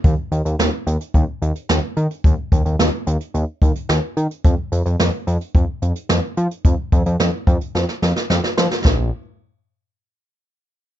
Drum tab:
HH |x-xxx-xxx-xxx-xx|x-xxx-xxx-xxx-xx|x-xxx-xxx-xxx-xx|x-xxx-xx--------|
SD |----o-------o---|----o-------o---|----o-------o---|----o---oooooooo|
BD |o-------o-------|o-o-------o-----|o-------o-------|o-o---o---------|

HH |----------------|
SD |o---------------|
BD |o---------------|